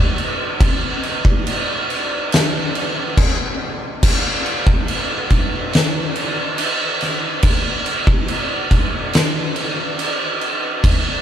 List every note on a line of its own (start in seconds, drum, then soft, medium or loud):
0.18 crash medium
0.61 kick loud
0.61 crash medium
1.03 crash medium
1.25 kick loud
1.47 crash medium
1.90 crash medium
2.32 snare loud
2.32 crash medium
2.75 crash medium
3.17 kick loud
3.17 crash loud
4.03 kick loud
4.03 crash loud
4.46 crash medium
4.67 kick loud
4.88 crash medium
5.30 kick medium
5.30 crash medium
5.73 snare loud
5.73 crash medium
6.16 crash medium
6.58 crash medium
7.01 snare soft
7.01 crash medium
7.43 kick loud
7.43 crash loud
7.86 crash medium
8.07 kick loud
8.28 crash medium
8.71 kick medium
8.71 crash medium
9.13 snare loud
9.13 crash medium
9.56 crash medium
9.99 crash medium
10.41 crash medium
10.84 kick loud
10.84 crash loud